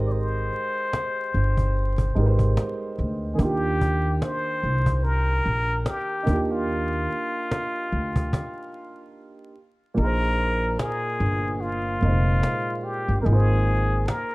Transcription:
Already playing: upright bass G#1, upright piano G#3 D#4 G4 A#4 C5
0.06 muted trumpet D5, cajon slap
0.12 muted trumpet C5
0.53 cajon slap
0.93 cajon slap
1.34 upright bass G1, cajon slap
1.57 cajon bass
1.76 cajon slap
1.98 cajon bass
2.15 upright bass G#1, upright piano G#3 D#4 G4 A#4, cajon slap
2.20 upright piano B4
2.26 upright piano C5
2.39 cajon bass
2.57 cajon slap
2.98 upright bass D2, cajon slap
3.34 upright piano D#3 A#3, muted trumpet G#4
3.39 upright bass D#2, upright piano D4 F4, muted trumpet G4, cajon bass
3.45 upright piano G4
3.81 cajon bass
4.22 muted trumpet C5, cajon slap
4.62 upright bass C2, cajon slap
4.86 cajon bass
5.03 muted trumpet A#4, cajon slap
5.45 upright bass A#1, cajon slap
5.86 muted trumpet G4, cajon slap
6.23 upright piano A#3 D#4, cajon bass
6.27 upright bass D#2, upright piano D4 F4
6.33 upright piano G4
6.52 muted trumpet F4
6.68 cajon slap
7.10 cajon slap
7.51 cajon slap
7.92 upright bass D2, cajon slap
8.16 cajon bass
8.33 cajon bass, cajon slap
9.94 upright bass A#1, upright piano A#2 A#3, muted trumpet A#4, cajon slap
9.99 upright piano D#4 G#4
10.04 upright piano C5
10.39 cajon slap
10.79 muted trumpet G#4, finger snap, cajon slap
11.20 upright bass G1, cajon slap
11.61 muted trumpet F4, cajon slap
12.01 upright bass F1, upright piano A#2 A#3 D#4, cajon slap
12.05 upright piano G#3 C5
12.43 finger snap, cajon slap
12.84 muted trumpet G4
13.08 upright bass G1
13.21 upright piano A#3 D#4, muted trumpet A#4, cajon slap
13.25 upright bass G#1, upright piano F4, muted trumpet G#4
13.32 upright piano C5
13.67 cajon slap
14.08 muted trumpet A#4, finger snap, cajon slap

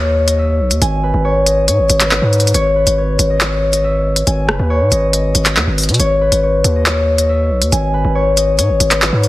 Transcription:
Already playing: 808-style bass D#2, harp B4 C#5 D#5
0.27 harp D#5, closed hi-hat
0.38 harp E5
0.60 808-style bass B1
0.71 808-style bass D#2, closed hi-hat
0.82 808-style bass G#1, harp G#5, closed hi-hat
1.03 harp B4
1.14 808-style bass G#1
1.25 harp C#5
1.46 harp D#5, closed hi-hat
1.68 808-style bass G#2, harp C#5, closed hi-hat
1.79 808-style bass G#1
1.90 808-style bass G#1, closed hi-hat
2.00 harp B4, clap, closed hi-hat
2.11 harp C#5, clap
2.22 808-style bass G#2
2.33 closed hi-hat
2.40 closed hi-hat
2.47 closed hi-hat
2.54 808-style bass G#1, harp C#5, closed hi-hat
2.76 harp B4
2.87 808-style bass G#1, closed hi-hat
2.98 harp C#5
3.19 808-style bass G#1, closed hi-hat
3.30 harp D#5
3.41 harp C#5, clap, closed hi-hat
3.73 harp D#5, closed hi-hat
3.84 harp E5
4.16 closed hi-hat
4.27 808-style bass G#1, harp G#5, closed hi-hat
4.48 808-style bass F#1, harp B4, cross-stick
4.59 808-style bass D#2
4.70 harp C#5
4.81 808-style bass G#2
4.92 808-style bass G#1, harp D#5, closed hi-hat
5.13 harp D#5, closed hi-hat
5.35 808-style bass G#1, closed hi-hat
5.46 clap, closed hi-hat
5.56 808-style bass D#2, clap
5.67 808-style bass G#1
5.78 closed hi-hat, open hi-hat
5.83 closed hi-hat
5.89 808-style bass B2, closed hi-hat
5.94 closed hi-hat
6.00 808-style bass G#1, harp C#5, closed hi-hat
6.21 harp B4
6.32 808-style bass G#1, closed hi-hat
6.43 harp C#5
6.64 808-style bass D#2, closed hi-hat
6.76 harp D#5
6.86 harp C#5, clap, closed hi-hat
7.18 harp D#5, closed hi-hat
7.29 harp E5
7.51 808-style bass B1
7.62 808-style bass D#2, closed hi-hat
7.72 808-style bass G#1, harp G#5, closed hi-hat
7.94 harp B4
8.05 808-style bass G#1
8.15 harp C#5
8.37 harp D#5, closed hi-hat
8.58 808-style bass G#2, harp C#5, closed hi-hat
8.69 808-style bass G#1
8.80 808-style bass G#1, closed hi-hat
8.91 harp B4, clap, closed hi-hat
9.02 harp C#5, clap
9.13 808-style bass G#2
9.23 closed hi-hat

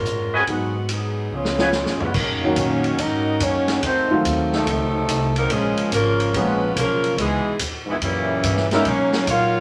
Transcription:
Already playing: upright bass G#2, saxophone section G#3 C#4 F4 A#4
0.05 hi-hat pedal
0.33 trumpet section F#4 B4 D#5 G#5
0.38 saxophone section F3 C4 C#4 G#4
0.47 upright bass G#2, grand piano F#3 B3 D#4 G#4, kick, ride
0.52 saxophone section D#3 G#3 B3 F#4
0.89 saxophone section F#3 B3 D#4 G#4, hi-hat pedal, ride
1.31 upright bass C#2, trombone section F3 G#3 C#4
1.35 saxophone section B3 F4 G#4 C#5
1.45 snare
1.58 grand piano F3 B3 C#4 G#4, trumpet section F4 B4 C#5 G#5, snare
1.72 snare, hi-hat pedal
1.86 upright bass G#2, snare
2.00 upright bass F2, trombone section F3 G#3 B3, saxophone section G#3 B4, floor tom
2.05 saxophone section C#4 F4
2.14 upright bass F#2, trombone section C#3 D#3 A#3, saxophone section F#3 C#4 D#4 A#4, kick, crash
2.43 grand piano D#3 F#3 A#3 C#4 F#4, muted upright bass stroke
2.56 upright bass A#2, trombone section D#3 A#3 C#4, saxophone section C#5, kick, hi-hat pedal, ride
2.60 saxophone section A#3 D#4 F#4
2.84 ride
2.98 upright bass G#2, trombone section D#3 A#3 D#4, saxophone section C#4 F#4 A#4 D#5, kick, ride
3.40 upright bass F#2, trombone section D#3 A#3 C#4, saxophone section A#3 D#4 F#4 C#5, kick, hi-hat pedal, ride
3.68 snare, ride
3.82 upright bass F2, trombone section D#3 A3 C4, saxophone section A3 D#4 F#4 C5, kick, ride
4.11 grand piano D#3 F#3 A3 C4 F4
4.25 upright bass D#2, kick, hi-hat pedal, ride
4.53 trombone section C3 D#3 A3, saxophone section F#3 C4 D#4 A4, snare
4.66 upright bass C#2, trombone section C3 D#3 A3, saxophone section F#3 C4 D#4 A4, kick, ride
5.08 upright bass C2, kick, hi-hat pedal, ride
5.36 saxophone section F#3 C4 D#4 A#4, trombone section A#3, ride
5.50 upright bass A#1, trombone section C#3 F3 G#3, saxophone section F3 A#3 C#4 G#4, kick, ride
5.77 ride
5.92 upright bass G#1, trombone section C#3 F3 A#3, saxophone section G#3 C#4 F4 A#4, kick, hi-hat pedal, ride
6.20 ride
6.34 upright bass A#1, trombone section F3 G#3 B3, grand piano F3 G#3 A#3 C#4 G#4, saxophone section G#3 C#4 F4 B4, kick, ride
6.74 upright bass B1, trombone section C#3 F3 A#3, kick, hi-hat pedal, ride
6.79 saxophone section G#3 C#4 F4 A#4
7.04 ride
7.16 upright bass C#2, trombone section B2 E3 G#3, kick, ride
7.21 saxophone section E3 B3 D#4 G#4
7.59 upright bass D#2, kick, hi-hat pedal, ride
7.86 trombone section G#2 B2 E3
7.90 saxophone section D#3 G#3 B3 E4
8.01 upright bass F#2, trombone section A#2 C#3 E3, saxophone section G3 A#3 C#4 E4, kick, ride
8.43 upright bass G2, kick, hi-hat pedal, ride
8.57 snare
8.71 grand piano G#3 B3 C#4 D#4 A#4, trombone section A#3 C#4 E4, saxophone section C#4 E5, snare, ride
8.75 saxophone section G4 A#4
8.84 upright bass B2, trombone section F#3 A#3 C#4, kick, ride
8.88 saxophone section A#3 D#4 F#4 C#5
9.13 snare
9.26 upright bass A#2, trombone section F#3 A#3 F4, saxophone section F5, kick, hi-hat pedal, ride
9.30 saxophone section D#4 A#4 C#5

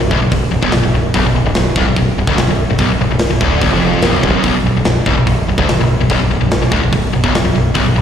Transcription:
0.00 fingered electric bass B0, distorted electric guitar B1
0.11 fingered electric bass D1, distorted electric guitar D2, kick
0.22 fingered electric bass B0, distorted electric guitar B1
0.32 fingered electric bass B0, distorted electric guitar B1, kick, open hi-hat
0.51 fingered electric bass B0, distorted electric guitar B1
0.62 fingered electric bass B0, distorted electric guitar B1, kick
0.72 fingered electric bass B0, distorted electric guitar B1, snare, open hi-hat
0.83 fingered electric bass B0, distorted electric guitar B1
0.94 fingered electric bass B0, distorted electric guitar B1
1.14 fingered electric bass B0, distorted electric guitar B1, kick, open hi-hat
1.24 fingered electric bass B0, distorted electric guitar B1
1.33 fingered electric bass B0, distorted electric guitar B1
1.45 fingered electric bass B0, distorted electric guitar B1
1.55 fingered electric bass B0, distorted electric guitar B1, snare, open hi-hat
1.76 fingered electric bass C1, distorted electric guitar C2, kick
1.86 fingered electric bass B0, distorted electric guitar B1
1.96 fingered electric bass B0, distorted electric guitar B1, kick, open hi-hat
2.16 fingered electric bass B0, distorted electric guitar B1
2.27 fingered electric bass D1, distorted electric guitar D2, kick
2.37 fingered electric bass B0, distorted electric guitar B1, snare, open hi-hat
2.47 fingered electric bass B0, distorted electric guitar B1
2.68 fingered electric bass B0, distorted electric guitar B1
2.78 fingered electric bass B0, distorted electric guitar B1, kick, open hi-hat
2.90 fingered electric bass B0, distorted electric guitar B1
2.99 fingered electric bass B0, distorted electric guitar B1
3.10 fingered electric bass B0, distorted electric guitar B1
3.19 snare, open hi-hat
3.30 fingered electric bass B0, distorted electric guitar B1
3.41 fingered electric bass D1, distorted electric guitar D2, kick
3.61 fingered electric bass B0, distorted electric guitar B1, kick, open hi-hat
3.72 fingered electric bass F1, distorted electric guitar F2
4.02 fingered electric bass B0, distorted electric guitar B1, snare, open hi-hat
4.23 fingered electric bass C1, distorted electric guitar C2, kick
4.33 fingered electric bass F#1, distorted electric guitar F#2
4.43 fingered electric bass B0, distorted electric guitar B1, kick, open hi-hat
4.55 fingered electric bass B0, distorted electric guitar B1
4.65 fingered electric bass B0, distorted electric guitar B1
4.75 fingered electric bass B0, distorted electric guitar B1
4.85 fingered electric bass B0, distorted electric guitar B1, snare, open hi-hat
5.06 fingered electric bass C1, distorted electric guitar C2, kick
5.16 fingered electric bass B0, distorted electric guitar B1
5.27 fingered electric bass B0, distorted electric guitar B1, kick, open hi-hat
5.48 fingered electric bass B0, distorted electric guitar B1
5.58 fingered electric bass D1, distorted electric guitar D2, kick
5.69 fingered electric bass B0, distorted electric guitar B1, snare, open hi-hat
5.79 fingered electric bass B0, distorted electric guitar B1
6.01 fingered electric bass B0, distorted electric guitar B1
6.10 fingered electric bass B0, distorted electric guitar B1, kick, open hi-hat
6.20 fingered electric bass B0, distorted electric guitar B1
6.30 fingered electric bass B0, distorted electric guitar B1
6.41 fingered electric bass B0, distorted electric guitar B1
6.51 snare, open hi-hat
6.61 fingered electric bass B0, distorted electric guitar B1
6.71 fingered electric bass D1, distorted electric guitar D2, kick
6.82 fingered electric bass B0, distorted electric guitar B1
6.93 fingered electric bass B0, distorted electric guitar B1, kick, open hi-hat
7.13 fingered electric bass B0, distorted electric guitar B1
7.24 fingered electric bass B0, distorted electric guitar B1, kick
7.34 fingered electric bass B0, distorted electric guitar B1, snare, open hi-hat
7.44 fingered electric bass B0, distorted electric guitar B1
7.55 fingered electric bass B0, distorted electric guitar B1
7.74 fingered electric bass B0, distorted electric guitar B1, kick, open hi-hat
7.86 fingered electric bass B0, distorted electric guitar B1
7.95 fingered electric bass B0, distorted electric guitar B1

